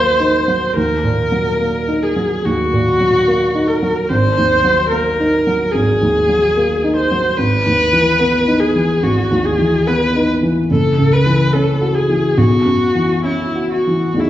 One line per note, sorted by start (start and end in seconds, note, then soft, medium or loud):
0.00 0.72 G#1 soft
0.00 0.76 D#2 soft
0.00 0.48 F#3 soft
0.00 0.79 A#3 soft
0.00 0.20 D#4 soft
0.00 0.76 C5 medium
0.20 0.65 D#4 soft
0.48 0.76 F#3 soft
0.76 2.41 D#2 soft
0.76 2.04 A#4 medium
1.04 1.49 A#2 soft
1.32 1.77 F#3 soft
1.61 2.06 A#3 soft
1.88 2.33 D#4 soft
2.02 2.47 G#4 medium
2.16 2.61 F#3 soft
2.45 4.06 D#2 soft
2.45 3.69 F#4 medium
2.73 3.17 A#2 soft
3.01 3.44 F#3 soft
3.28 3.71 A#3 soft
3.55 3.99 D#4 soft
3.68 4.11 A#4 medium
3.83 4.10 F#3 soft
4.09 5.70 G#1 soft
4.09 4.90 C5 medium
4.38 4.81 D#2 soft
4.64 5.08 F#3 soft
4.91 5.35 A#3 soft
4.91 5.73 A#4 medium
5.20 5.63 D#4 soft
5.47 5.90 F#3 soft
5.71 7.34 G#1 soft
5.71 6.96 G#4 medium
6.02 6.45 D#2 soft
6.29 6.73 F#3 soft
6.57 7.00 A#3 soft
6.84 7.27 D#4 soft
6.97 7.38 C5 medium
7.11 7.38 F#3 soft
7.37 8.99 G#1 soft
7.37 8.62 B4 medium
7.67 8.09 D#2 soft
7.93 8.36 E3 soft
8.19 8.64 B3 soft
8.48 8.92 D#4 soft
8.60 9.05 G#4 medium
8.76 9.20 E3 soft
9.03 10.66 G#1 soft
9.03 9.47 F#4 medium
9.31 9.75 D#2 soft
9.45 9.89 G#4 medium
9.59 10.03 E3 soft
9.87 10.31 B3 soft
9.87 10.29 B4 medium
10.16 10.59 D#4 soft
10.43 10.70 E3 soft
10.71 12.33 F#1 soft
10.71 11.15 A4 medium
10.98 11.42 C#2 soft
11.13 11.55 B4 medium
11.26 11.70 E3 soft
11.53 11.98 C#4 soft
11.53 11.96 A4 medium
11.81 12.26 F#4 soft
11.95 12.39 G#4 medium
12.10 12.37 E3 soft
12.38 14.15 B1 soft
12.38 13.24 F#4 medium
12.65 13.12 F#2 soft
12.95 13.43 E3 soft
13.24 13.73 C#4 soft
13.24 13.70 E4 soft
13.56 14.06 F#4 soft
13.72 14.22 F#4 soft
13.87 14.14 E3 soft
14.14 14.30 E2 soft
14.14 14.30 E3 soft
14.14 14.30 D#4 soft
14.14 14.30 F#4 soft
14.18 14.30 E4 soft
14.18 14.30 G#4 soft